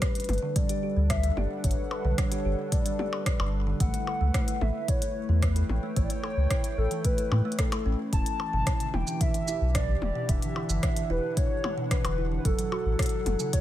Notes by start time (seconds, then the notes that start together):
Already playing: G3 B4
0.02 kick, cross-stick, closed hi-hat
0.13 D4, closed hi-hat
0.20 closed hi-hat
0.24 closed hi-hat
0.29 G1, closed hi-hat, high tom
0.33 closed hi-hat
0.38 closed hi-hat
0.42 D3 A4
0.56 G3 D5, kick, closed hi-hat
0.69 G4, closed hi-hat
0.83 G4
0.96 D2 G3
1.03 F#5
1.10 G3 E5, kick, cross-stick, closed hi-hat
1.23 G3, closed hi-hat
1.37 G1 G4 D5, high tom
1.64 G1 C#5, kick, closed hi-hat
1.71 closed hi-hat
1.91 B4, percussion blips
2.05 B1 D3
2.18 G3 C#5, kick, cross-stick, closed hi-hat
2.32 G4, closed hi-hat
2.45 G1 G4
2.59 G3
2.72 G3 D5, kick, closed hi-hat
2.86 G3, closed hi-hat
2.99 G4, high tom
3.13 percussion blips
3.26 kick, cross-stick, closed hi-hat
3.40 G1, percussion blips
3.67 D3
3.80 A1 A3 F#5, kick, closed hi-hat
3.90 E4
3.94 A4, closed hi-hat
4.07 A4, percussion blips
4.21 C#2 A3
4.34 A3, kick, cross-stick, closed hi-hat
4.48 A3, closed hi-hat
4.61 A1 A4 E5, high tom
4.88 C#5, kick, closed hi-hat
5.02 closed hi-hat
5.29 E2 E3
5.42 A3 B4 C#5 G5, kick, cross-stick, closed hi-hat
5.56 A4, closed hi-hat
5.69 A1 A4, high tom
5.83 A3
5.96 A1 A3 C#5, kick, closed hi-hat
6.04 D5
6.10 A3 C#5, closed hi-hat
6.24 A4, percussion blips
6.37 C#2
6.51 kick, cross-stick, closed hi-hat
6.64 closed hi-hat
6.78 A1 A4
6.91 E3, closed hi-hat
7.05 A3 B4, kick, closed hi-hat
7.18 A4, closed hi-hat
7.32 A2 A3, high tom, percussion blips
7.45 A3
7.52 closed hi-hat
7.59 A4, kick, cross-stick, closed hi-hat
7.72 A3, closed hi-hat, percussion blips
7.86 A1 C#4
8.13 E1 E3 A5, kick, closed hi-hat
8.26 closed hi-hat
8.40 percussion blips
8.53 G1 B2
8.67 E3, kick, cross-stick, closed hi-hat
8.80 D3, closed hi-hat
8.85 D4 G4
8.94 E1 E4 G5, high tom
9.07 E3, shaker
9.21 E3 E5, kick, closed hi-hat
9.34 E3, closed hi-hat
9.48 E4, shaker
9.61 B1
9.75 D5, kick, cross-stick, closed hi-hat
10.02 E1, high tom
10.07 F#5
10.15 B2
10.29 E1 E3 E5, kick, closed hi-hat
10.42 D3, closed hi-hat
10.56 E4, percussion blips
10.69 G1 E3, shaker
10.83 E3, kick, cross-stick, closed hi-hat
10.97 E3, closed hi-hat
11.10 E1 E4 B4
11.37 C#5, kick, closed hi-hat
11.64 high tom, percussion blips
11.78 B2
11.91 E3 B4, kick, cross-stick, closed hi-hat
12.05 E1 D3, closed hi-hat, percussion blips
12.18 E4
12.32 E3
12.38 B4
12.45 F#1 F#3 A4, kick, closed hi-hat
12.59 F#3, closed hi-hat
12.72 F#4, percussion blips
12.86 A1
12.99 kick, cross-stick, closed hi-hat
13.03 closed hi-hat
13.06 closed hi-hat
13.09 closed hi-hat
13.26 F#1, closed hi-hat, high tom
13.40 C#3, shaker
13.46 A4
13.53 F#3 C#5, kick, closed hi-hat